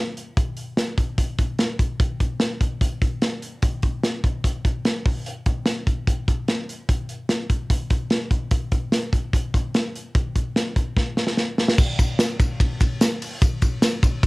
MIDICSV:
0, 0, Header, 1, 2, 480
1, 0, Start_track
1, 0, Tempo, 407609
1, 436, Time_signature, 4, 2, 24, 8
1, 16802, End_track
2, 0, Start_track
2, 0, Title_t, "Drums"
2, 202, Note_on_c, 9, 42, 67
2, 319, Note_off_c, 9, 42, 0
2, 437, Note_on_c, 9, 36, 116
2, 437, Note_on_c, 9, 42, 81
2, 555, Note_off_c, 9, 36, 0
2, 555, Note_off_c, 9, 42, 0
2, 668, Note_on_c, 9, 42, 58
2, 786, Note_off_c, 9, 42, 0
2, 910, Note_on_c, 9, 38, 98
2, 916, Note_on_c, 9, 42, 81
2, 1028, Note_off_c, 9, 38, 0
2, 1034, Note_off_c, 9, 42, 0
2, 1151, Note_on_c, 9, 36, 85
2, 1155, Note_on_c, 9, 42, 75
2, 1269, Note_off_c, 9, 36, 0
2, 1272, Note_off_c, 9, 42, 0
2, 1391, Note_on_c, 9, 36, 85
2, 1392, Note_on_c, 9, 42, 90
2, 1509, Note_off_c, 9, 36, 0
2, 1509, Note_off_c, 9, 42, 0
2, 1632, Note_on_c, 9, 42, 80
2, 1634, Note_on_c, 9, 36, 81
2, 1750, Note_off_c, 9, 42, 0
2, 1752, Note_off_c, 9, 36, 0
2, 1869, Note_on_c, 9, 42, 67
2, 1873, Note_on_c, 9, 38, 94
2, 1986, Note_off_c, 9, 42, 0
2, 1991, Note_off_c, 9, 38, 0
2, 2112, Note_on_c, 9, 36, 82
2, 2119, Note_on_c, 9, 42, 70
2, 2229, Note_off_c, 9, 36, 0
2, 2236, Note_off_c, 9, 42, 0
2, 2353, Note_on_c, 9, 36, 111
2, 2355, Note_on_c, 9, 42, 86
2, 2470, Note_off_c, 9, 36, 0
2, 2473, Note_off_c, 9, 42, 0
2, 2593, Note_on_c, 9, 42, 64
2, 2594, Note_on_c, 9, 36, 77
2, 2711, Note_off_c, 9, 42, 0
2, 2712, Note_off_c, 9, 36, 0
2, 2823, Note_on_c, 9, 38, 95
2, 2829, Note_on_c, 9, 42, 83
2, 2941, Note_off_c, 9, 38, 0
2, 2947, Note_off_c, 9, 42, 0
2, 3070, Note_on_c, 9, 36, 74
2, 3076, Note_on_c, 9, 42, 78
2, 3188, Note_off_c, 9, 36, 0
2, 3193, Note_off_c, 9, 42, 0
2, 3309, Note_on_c, 9, 36, 84
2, 3318, Note_on_c, 9, 42, 90
2, 3427, Note_off_c, 9, 36, 0
2, 3436, Note_off_c, 9, 42, 0
2, 3552, Note_on_c, 9, 36, 86
2, 3553, Note_on_c, 9, 42, 71
2, 3670, Note_off_c, 9, 36, 0
2, 3671, Note_off_c, 9, 42, 0
2, 3788, Note_on_c, 9, 42, 71
2, 3792, Note_on_c, 9, 38, 110
2, 3906, Note_off_c, 9, 42, 0
2, 3910, Note_off_c, 9, 38, 0
2, 4031, Note_on_c, 9, 42, 69
2, 4149, Note_off_c, 9, 42, 0
2, 4265, Note_on_c, 9, 42, 86
2, 4270, Note_on_c, 9, 36, 102
2, 4383, Note_off_c, 9, 42, 0
2, 4387, Note_off_c, 9, 36, 0
2, 4502, Note_on_c, 9, 42, 54
2, 4510, Note_on_c, 9, 36, 79
2, 4620, Note_off_c, 9, 42, 0
2, 4628, Note_off_c, 9, 36, 0
2, 4750, Note_on_c, 9, 38, 96
2, 4756, Note_on_c, 9, 42, 91
2, 4868, Note_off_c, 9, 38, 0
2, 4874, Note_off_c, 9, 42, 0
2, 4990, Note_on_c, 9, 36, 84
2, 5000, Note_on_c, 9, 42, 75
2, 5108, Note_off_c, 9, 36, 0
2, 5117, Note_off_c, 9, 42, 0
2, 5230, Note_on_c, 9, 36, 79
2, 5238, Note_on_c, 9, 42, 103
2, 5348, Note_off_c, 9, 36, 0
2, 5356, Note_off_c, 9, 42, 0
2, 5473, Note_on_c, 9, 36, 83
2, 5477, Note_on_c, 9, 42, 72
2, 5591, Note_off_c, 9, 36, 0
2, 5595, Note_off_c, 9, 42, 0
2, 5711, Note_on_c, 9, 42, 76
2, 5715, Note_on_c, 9, 38, 106
2, 5829, Note_off_c, 9, 42, 0
2, 5833, Note_off_c, 9, 38, 0
2, 5954, Note_on_c, 9, 36, 90
2, 5969, Note_on_c, 9, 46, 62
2, 6072, Note_off_c, 9, 36, 0
2, 6087, Note_off_c, 9, 46, 0
2, 6197, Note_on_c, 9, 42, 82
2, 6315, Note_off_c, 9, 42, 0
2, 6428, Note_on_c, 9, 42, 62
2, 6432, Note_on_c, 9, 36, 77
2, 6545, Note_off_c, 9, 42, 0
2, 6549, Note_off_c, 9, 36, 0
2, 6660, Note_on_c, 9, 38, 104
2, 6666, Note_on_c, 9, 42, 97
2, 6778, Note_off_c, 9, 38, 0
2, 6784, Note_off_c, 9, 42, 0
2, 6911, Note_on_c, 9, 36, 78
2, 6916, Note_on_c, 9, 42, 72
2, 7028, Note_off_c, 9, 36, 0
2, 7033, Note_off_c, 9, 42, 0
2, 7152, Note_on_c, 9, 36, 88
2, 7157, Note_on_c, 9, 42, 94
2, 7269, Note_off_c, 9, 36, 0
2, 7275, Note_off_c, 9, 42, 0
2, 7394, Note_on_c, 9, 36, 87
2, 7398, Note_on_c, 9, 42, 78
2, 7512, Note_off_c, 9, 36, 0
2, 7516, Note_off_c, 9, 42, 0
2, 7631, Note_on_c, 9, 42, 76
2, 7636, Note_on_c, 9, 38, 95
2, 7749, Note_off_c, 9, 42, 0
2, 7753, Note_off_c, 9, 38, 0
2, 7880, Note_on_c, 9, 42, 63
2, 7998, Note_off_c, 9, 42, 0
2, 8112, Note_on_c, 9, 36, 95
2, 8115, Note_on_c, 9, 42, 85
2, 8229, Note_off_c, 9, 36, 0
2, 8233, Note_off_c, 9, 42, 0
2, 8348, Note_on_c, 9, 42, 60
2, 8466, Note_off_c, 9, 42, 0
2, 8585, Note_on_c, 9, 38, 102
2, 8591, Note_on_c, 9, 42, 98
2, 8702, Note_off_c, 9, 38, 0
2, 8708, Note_off_c, 9, 42, 0
2, 8828, Note_on_c, 9, 36, 77
2, 8832, Note_on_c, 9, 42, 68
2, 8945, Note_off_c, 9, 36, 0
2, 8949, Note_off_c, 9, 42, 0
2, 9067, Note_on_c, 9, 36, 89
2, 9070, Note_on_c, 9, 42, 103
2, 9184, Note_off_c, 9, 36, 0
2, 9188, Note_off_c, 9, 42, 0
2, 9306, Note_on_c, 9, 42, 78
2, 9309, Note_on_c, 9, 36, 89
2, 9424, Note_off_c, 9, 42, 0
2, 9427, Note_off_c, 9, 36, 0
2, 9543, Note_on_c, 9, 42, 77
2, 9548, Note_on_c, 9, 38, 101
2, 9661, Note_off_c, 9, 42, 0
2, 9665, Note_off_c, 9, 38, 0
2, 9784, Note_on_c, 9, 36, 81
2, 9786, Note_on_c, 9, 42, 64
2, 9902, Note_off_c, 9, 36, 0
2, 9903, Note_off_c, 9, 42, 0
2, 10021, Note_on_c, 9, 42, 87
2, 10026, Note_on_c, 9, 36, 100
2, 10139, Note_off_c, 9, 42, 0
2, 10143, Note_off_c, 9, 36, 0
2, 10265, Note_on_c, 9, 42, 58
2, 10268, Note_on_c, 9, 36, 76
2, 10383, Note_off_c, 9, 42, 0
2, 10386, Note_off_c, 9, 36, 0
2, 10506, Note_on_c, 9, 38, 93
2, 10512, Note_on_c, 9, 42, 91
2, 10624, Note_off_c, 9, 38, 0
2, 10630, Note_off_c, 9, 42, 0
2, 10749, Note_on_c, 9, 36, 75
2, 10758, Note_on_c, 9, 42, 71
2, 10866, Note_off_c, 9, 36, 0
2, 10875, Note_off_c, 9, 42, 0
2, 10991, Note_on_c, 9, 36, 85
2, 11002, Note_on_c, 9, 42, 96
2, 11109, Note_off_c, 9, 36, 0
2, 11120, Note_off_c, 9, 42, 0
2, 11236, Note_on_c, 9, 36, 84
2, 11244, Note_on_c, 9, 42, 80
2, 11354, Note_off_c, 9, 36, 0
2, 11362, Note_off_c, 9, 42, 0
2, 11476, Note_on_c, 9, 42, 70
2, 11480, Note_on_c, 9, 38, 104
2, 11594, Note_off_c, 9, 42, 0
2, 11598, Note_off_c, 9, 38, 0
2, 11724, Note_on_c, 9, 42, 66
2, 11842, Note_off_c, 9, 42, 0
2, 11953, Note_on_c, 9, 36, 117
2, 11955, Note_on_c, 9, 42, 82
2, 12071, Note_off_c, 9, 36, 0
2, 12073, Note_off_c, 9, 42, 0
2, 12196, Note_on_c, 9, 36, 75
2, 12196, Note_on_c, 9, 42, 67
2, 12313, Note_off_c, 9, 36, 0
2, 12314, Note_off_c, 9, 42, 0
2, 12437, Note_on_c, 9, 38, 94
2, 12443, Note_on_c, 9, 42, 84
2, 12555, Note_off_c, 9, 38, 0
2, 12561, Note_off_c, 9, 42, 0
2, 12672, Note_on_c, 9, 36, 73
2, 12679, Note_on_c, 9, 42, 79
2, 12790, Note_off_c, 9, 36, 0
2, 12796, Note_off_c, 9, 42, 0
2, 12913, Note_on_c, 9, 36, 86
2, 12920, Note_on_c, 9, 38, 51
2, 13031, Note_off_c, 9, 36, 0
2, 13037, Note_off_c, 9, 38, 0
2, 13154, Note_on_c, 9, 38, 70
2, 13270, Note_off_c, 9, 38, 0
2, 13270, Note_on_c, 9, 38, 62
2, 13387, Note_off_c, 9, 38, 0
2, 13394, Note_on_c, 9, 38, 68
2, 13511, Note_off_c, 9, 38, 0
2, 13639, Note_on_c, 9, 38, 77
2, 13757, Note_off_c, 9, 38, 0
2, 13759, Note_on_c, 9, 38, 95
2, 13871, Note_on_c, 9, 54, 51
2, 13876, Note_on_c, 9, 36, 127
2, 13876, Note_on_c, 9, 49, 106
2, 13877, Note_off_c, 9, 38, 0
2, 13989, Note_off_c, 9, 54, 0
2, 13994, Note_off_c, 9, 36, 0
2, 13994, Note_off_c, 9, 49, 0
2, 14119, Note_on_c, 9, 36, 87
2, 14120, Note_on_c, 9, 51, 48
2, 14122, Note_on_c, 9, 54, 57
2, 14237, Note_off_c, 9, 36, 0
2, 14238, Note_off_c, 9, 51, 0
2, 14240, Note_off_c, 9, 54, 0
2, 14354, Note_on_c, 9, 38, 101
2, 14360, Note_on_c, 9, 51, 69
2, 14367, Note_on_c, 9, 54, 76
2, 14472, Note_off_c, 9, 38, 0
2, 14478, Note_off_c, 9, 51, 0
2, 14485, Note_off_c, 9, 54, 0
2, 14598, Note_on_c, 9, 36, 88
2, 14602, Note_on_c, 9, 51, 68
2, 14616, Note_on_c, 9, 54, 52
2, 14716, Note_off_c, 9, 36, 0
2, 14720, Note_off_c, 9, 51, 0
2, 14733, Note_off_c, 9, 54, 0
2, 14839, Note_on_c, 9, 36, 85
2, 14845, Note_on_c, 9, 51, 84
2, 14957, Note_off_c, 9, 36, 0
2, 14962, Note_off_c, 9, 51, 0
2, 15076, Note_on_c, 9, 54, 29
2, 15083, Note_on_c, 9, 36, 81
2, 15089, Note_on_c, 9, 51, 76
2, 15194, Note_off_c, 9, 54, 0
2, 15200, Note_off_c, 9, 36, 0
2, 15207, Note_off_c, 9, 51, 0
2, 15320, Note_on_c, 9, 51, 65
2, 15324, Note_on_c, 9, 38, 108
2, 15330, Note_on_c, 9, 54, 102
2, 15438, Note_off_c, 9, 51, 0
2, 15442, Note_off_c, 9, 38, 0
2, 15448, Note_off_c, 9, 54, 0
2, 15567, Note_on_c, 9, 54, 42
2, 15568, Note_on_c, 9, 46, 74
2, 15568, Note_on_c, 9, 51, 53
2, 15685, Note_off_c, 9, 54, 0
2, 15686, Note_off_c, 9, 46, 0
2, 15686, Note_off_c, 9, 51, 0
2, 15801, Note_on_c, 9, 44, 76
2, 15801, Note_on_c, 9, 51, 76
2, 15802, Note_on_c, 9, 36, 127
2, 15810, Note_on_c, 9, 54, 52
2, 15918, Note_off_c, 9, 44, 0
2, 15919, Note_off_c, 9, 36, 0
2, 15919, Note_off_c, 9, 51, 0
2, 15927, Note_off_c, 9, 54, 0
2, 16037, Note_on_c, 9, 51, 56
2, 16041, Note_on_c, 9, 54, 53
2, 16042, Note_on_c, 9, 36, 79
2, 16155, Note_off_c, 9, 51, 0
2, 16159, Note_off_c, 9, 54, 0
2, 16160, Note_off_c, 9, 36, 0
2, 16277, Note_on_c, 9, 38, 102
2, 16280, Note_on_c, 9, 54, 75
2, 16283, Note_on_c, 9, 51, 76
2, 16394, Note_off_c, 9, 38, 0
2, 16397, Note_off_c, 9, 54, 0
2, 16400, Note_off_c, 9, 51, 0
2, 16521, Note_on_c, 9, 36, 92
2, 16530, Note_on_c, 9, 51, 71
2, 16532, Note_on_c, 9, 54, 54
2, 16639, Note_off_c, 9, 36, 0
2, 16648, Note_off_c, 9, 51, 0
2, 16650, Note_off_c, 9, 54, 0
2, 16760, Note_on_c, 9, 36, 97
2, 16763, Note_on_c, 9, 51, 76
2, 16802, Note_off_c, 9, 36, 0
2, 16802, Note_off_c, 9, 51, 0
2, 16802, End_track
0, 0, End_of_file